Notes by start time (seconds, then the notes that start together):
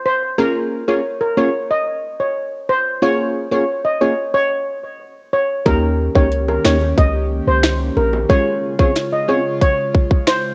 0.06 C5
0.38 A#3 C#4 F4 G#4 A#4
0.88 A#3 C#4 F4 G#4 C#5
1.21 A#4
1.37 A#3 C#4 F4 G#4 C#5
1.71 D#5
2.20 C#5
2.69 C5
3.02 A#3 C#4 F4 G#4 C#5
3.51 A#3 C#4 F4 G#4 C#5
3.85 D#5
4.01 A#3 C#4 F4 G#4 C#5
4.34 C#5
5.33 C#5
5.65 D#2 D#3 A#3 C#4 D#4 G4 A#4, kick, closed hi-hat, high bongo
6.15 C#2 A#3 C#4 D#4 G4 C#5, kick, high bongo
6.32 closed hi-hat
6.48 A#4, high bongo
6.65 D#2 A#3 C#4 D#4 G4 C#5, finger snap, snare, low bongo
6.81 high bongo
6.98 C#2 D#5, kick, closed hi-hat, high bongo
7.47 C#2 C5
7.63 finger snap, snare, closed hi-hat
7.97 A#1 A#4, low bongo
8.13 high bongo
8.29 C#3 G#3 C#4 F4 G#4 C#5, kick, closed hi-hat
8.79 C4 C#4 F4 G#4 C#5, kick
8.96 snare, closed hi-hat
9.13 D#5
9.28 C4 C#4 F4 G#4 C#5
9.61 C#5, kick, closed hi-hat
9.95 kick
10.11 kick
10.27 C5, finger snap, snare, closed hi-hat